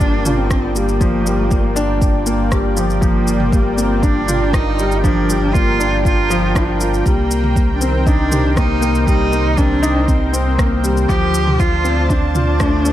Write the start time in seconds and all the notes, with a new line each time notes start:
Already playing: G1 F3 G3 A#3 F4 A#4 D5 G5
0.00 D4, kick, shaker
0.26 F4, mid tom, shaker
0.37 C4
0.50 kick, cross-stick, shaker
0.74 G3 A#3, shaker
0.89 shaker
1.01 F3, kick, shaker
1.26 G3, shaker
1.51 A#3, kick, shaker
1.76 D4, shaker
2.02 kick, shaker
2.26 A#3, shaker
2.52 G3, kick, cross-stick, shaker
2.77 F3, shaker
2.90 shaker
3.01 F3 A#3, kick, shaker
3.27 shaker
3.40 mid tom
3.52 G3, kick, shaker
3.77 A#3 C4, shaker
4.02 D4, kick, shaker
4.28 F4, mid tom, shaker
4.53 D#4, kick, cross-stick, shaker
4.79 G3, shaker
4.91 shaker
5.03 F3 D4, kick, shaker
5.29 G3, shaker
5.54 A#3 F4, kick, shaker
5.80 D4, shaker
6.05 F4, kick, shaker
6.30 F3, shaker
6.55 D4, kick, cross-stick, shaker
6.80 F4, shaker
6.94 shaker
7.06 C2 D#3 G3 A#3 C5, kick, shaker
7.31 shaker
7.44 mid tom
7.56 kick, shaker
7.75 D4
7.81 C4, shaker
8.06 D4 D#4, kick, shaker
8.32 G4, mid tom, shaker
8.56 A#3 D#4, kick, cross-stick, shaker
8.81 A#3, shaker
8.95 shaker
9.07 G3 D#4, kick, shaker
9.32 A#3, shaker
9.57 C4 D4, kick, shaker
9.82 D#4, shaker
10.08 C4, kick, shaker
10.33 C4, shaker
10.58 A#3, kick, cross-stick, shaker
10.84 G3, shaker
10.97 shaker
11.08 D2 F3 F4 G4 D5 A5, kick, shaker
11.34 shaker
11.47 mid tom
11.59 F4, kick, shaker
11.84 C4, shaker
12.10 D4, kick, shaker
12.35 F4, mid tom, shaker
12.60 A3, kick, cross-stick, shaker
12.85 A3, shaker